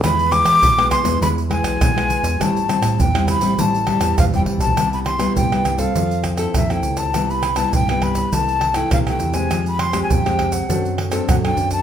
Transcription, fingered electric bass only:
X:1
M:4/4
L:1/16
Q:1/4=101
K:Am
V:1 name="Fingered electric bass" clef=bass
E,,3 E, B,,,3 E,, E,,3 B,,, B,,,3 E,, | A,,,3 A,, E,,3 A,,, A,,,3 E,, E,, G,,, A,,, B,,, | [K:C] C,,4 C,,4 F,,4 F,,2 _D,,2 | C,,4 C,,4 C,,4 C,,2 E,,2 |
F,,4 F,,4 ^F,,4 F,,2 F,,2 |]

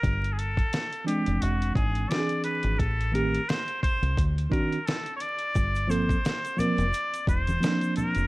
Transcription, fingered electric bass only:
X:1
M:4/4
L:1/16
Q:"Swing 16ths" 1/4=87
K:Gdor
V:1 name="Fingered electric bass" clef=bass
G,,,4 z3 F,,, E,,,2 ^G,,,2 z3 G,,, | A,,,4 z3 C,, D,,2 z6 | G,,,4 z3 F,,, z2 E,,,2 z3 F,,, |]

